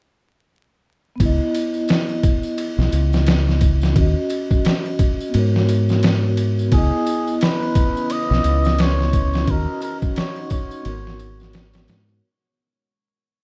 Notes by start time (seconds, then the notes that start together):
1.16 B3
1.20 C#2 E4, kick, ride, tambourine
1.25 D#5
1.55 ride, tambourine
1.74 tambourine
1.88 snare, ride, tambourine
2.09 triangle
2.23 kick, ride, tambourine
2.43 tambourine, triangle
2.57 ride, tambourine
2.78 B1, snare
2.92 C#2, ride, tambourine
3.13 snare, tambourine, triangle
3.27 snare, ride, tambourine
3.49 snare
3.61 kick, ride, tambourine
3.81 snare, tambourine
3.91 C#4
3.96 D#2 F#4, kick, ride, tambourine
4.01 D#5
4.30 ride, tambourine
4.51 kick, tambourine
4.65 snare, ride, tambourine
4.86 triangle
4.99 kick, ride, tambourine
5.20 tambourine, triangle
5.29 B3 F#4
5.34 G#2 A#4, ride, tambourine
5.39 C#5
5.56 snare
5.69 ride, tambourine
5.89 snare, tambourine
6.03 snare, ride, tambourine
6.37 ride, tambourine
6.59 tambourine
6.68 B3 C#4 E4 B4 D#5, ride
6.72 C#2 E4 G#4, kick, tambourine
6.77 D#5
7.06 ride, tambourine
7.27 tambourine
7.41 B4, snare, ride, tambourine
7.63 triangle
7.75 kick, ride, tambourine
7.97 tambourine, triangle
8.10 D#5, ride, tambourine
8.31 B1, snare
8.44 C#2, ride, tambourine
8.65 snare, tambourine, triangle
8.79 C#5, snare, ride, tambourine
9.01 snare
9.13 kick, ride, tambourine
9.34 snare, tambourine
9.43 C#4
9.47 D#2 D#4 F#4 A#4 C#5 F#5, kick, ride, tambourine
9.52 D#5
9.81 A#4, ride, tambourine
10.02 kick, tambourine
10.16 C#5, snare, ride, tambourine
10.36 triangle
10.50 C#5, kick, ride, tambourine
10.71 tambourine, triangle
10.81 G#3 B3 F#4 A#4, ride
10.85 G#1 A#4, tambourine
10.90 C#5
11.07 snare
11.19 ride, tambourine
11.40 snare, tambourine
11.53 snare, ride, tambourine
11.73 snare, ride
11.88 G#2, snare, ride, tambourine
12.09 tambourine